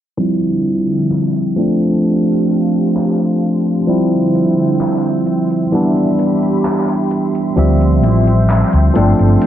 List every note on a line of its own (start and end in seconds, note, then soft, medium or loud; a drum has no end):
0.18 1.56 D3 medium
0.18 1.48 F3 medium
0.18 1.56 F3 medium
0.18 1.48 G3 medium
0.18 1.49 C4 medium
0.18 1.49 E4 medium
0.18 1.56 E5 medium
0.18 1.56 G5 medium
0.18 5.69 C6 medium
0.18 closed hi-hat medium
0.43 closed hi-hat soft
0.65 closed hi-hat medium
0.89 closed hi-hat soft
1.11 clap loud
1.35 closed hi-hat soft
1.56 3.78 F3 medium
1.56 3.79 A3 medium
1.56 3.79 C4 medium
1.56 3.80 D4 medium
1.56 3.87 G4 medium
1.56 3.86 F5 medium
1.56 3.87 A5 medium
1.56 closed hi-hat medium
1.82 closed hi-hat soft
2.04 closed hi-hat medium
2.28 closed hi-hat soft
2.50 closed hi-hat medium
2.74 closed hi-hat soft
2.96 clap loud
2.96 closed hi-hat medium
3.20 closed hi-hat soft
3.42 closed hi-hat medium
3.66 closed hi-hat soft
3.87 5.71 D3 medium
3.87 5.63 F3 medium
3.87 5.71 F3 medium
3.87 5.64 G3 medium
3.87 5.64 C4 medium
3.87 5.64 E4 medium
3.87 7.54 E5 medium
3.87 5.72 G5 medium
3.87 closed hi-hat medium
4.12 closed hi-hat soft
4.35 closed hi-hat medium
4.59 closed hi-hat soft
4.81 clap loud
4.81 closed hi-hat medium
5.04 closed hi-hat soft
5.27 closed hi-hat medium
5.51 closed hi-hat soft
5.72 7.48 E3 medium
5.72 7.48 G3 medium
5.72 7.49 B3 medium
5.72 7.49 D4 medium
5.72 7.56 G4 medium
5.72 7.56 B5 medium
5.72 9.47 C6 medium
5.72 closed hi-hat medium
5.97 closed hi-hat soft
6.19 closed hi-hat medium
6.43 closed hi-hat soft
6.65 clap loud
6.65 closed hi-hat medium
6.89 closed hi-hat soft
7.11 closed hi-hat medium
7.35 closed hi-hat soft
7.56 8.04 D2 medium
7.56 8.86 F3 medium
7.56 8.95 F3 medium
7.56 8.87 G3 medium
7.56 8.87 C4 medium
7.56 8.95 E5 medium
7.56 8.88 E5 medium
7.56 9.47 G5 medium
7.56 closed hi-hat medium
7.81 closed hi-hat soft
8.03 8.62 A1 medium
8.03 8.27 C4 medium
8.03 8.27 E4 medium
8.03 8.27 F4 medium
8.03 8.27 G4 medium
8.03 closed hi-hat medium
8.27 closed hi-hat soft
8.49 clap loud
8.49 closed hi-hat medium
8.73 8.89 D2 medium
8.73 closed hi-hat soft
8.94 9.12 G1 medium
8.94 9.47 F3 medium
8.94 9.47 A3 medium
8.94 9.47 C4 medium
8.94 9.47 D4 medium
8.94 9.47 F4 medium
8.94 9.47 A4 medium
8.94 9.47 F5 medium
8.94 closed hi-hat medium
9.19 9.35 G1 loud
9.19 closed hi-hat soft
9.42 closed hi-hat medium